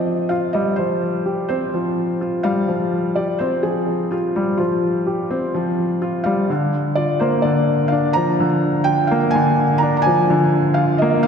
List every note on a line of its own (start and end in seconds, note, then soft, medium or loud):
0.00 0.78 F3 medium
0.00 1.50 C4 medium
0.00 1.26 G4 medium
0.00 0.31 D#5 medium
0.29 0.53 F4 medium
0.29 0.54 F5 medium
0.53 0.68 G3 medium
0.53 0.78 D#5 medium
0.76 1.01 F3 medium
0.76 1.47 C5 medium
1.26 1.48 G4 medium
1.49 1.72 C4 medium
1.49 2.47 C5 medium
1.74 1.87 F3 medium
2.21 2.44 F4 medium
2.43 2.58 G3 medium
2.43 3.18 F5 medium
2.68 2.91 F3 medium
3.16 3.39 G4 medium
3.16 3.40 D5 medium
3.39 3.63 C4 medium
3.39 3.64 C5 medium
3.63 3.78 F3 medium
3.63 4.12 G#4 medium
4.11 4.34 F4 medium
4.11 4.60 G4 medium
4.36 4.49 G3 medium
4.57 4.82 F3 medium
4.57 5.97 F4 medium
5.07 5.29 G4 medium
5.30 5.53 C4 medium
5.55 5.68 F3 medium
6.02 6.25 F4 medium
6.24 6.39 G3 medium
6.24 6.98 F5 medium
6.50 6.72 D3 medium
6.95 7.20 F4 medium
6.95 7.21 D5 medium
7.20 7.44 A#3 medium
7.20 7.45 C5 medium
7.42 7.58 D3 medium
7.42 7.93 D5 medium
7.88 8.15 F5 medium
7.92 8.15 D4 medium
8.13 8.30 F3 loud
8.13 8.88 A#5 loud
8.40 8.63 D3 medium
8.84 9.10 F4 medium
8.84 9.11 G5 loud
9.07 9.34 A#3 medium
9.07 9.34 F5 medium
9.31 9.82 G#5 loud
9.35 9.49 D3 medium
9.78 9.95 A#5 medium
9.83 10.06 D4 medium
9.97 10.05 A#5 medium
10.02 10.78 G#5 loud
10.06 10.20 F3 loud
10.30 10.53 D3 medium
10.74 11.01 F4 medium
10.74 11.01 F5 medium
10.98 11.25 A#3 loud
10.98 11.25 D#5 medium
11.23 11.27 F5 medium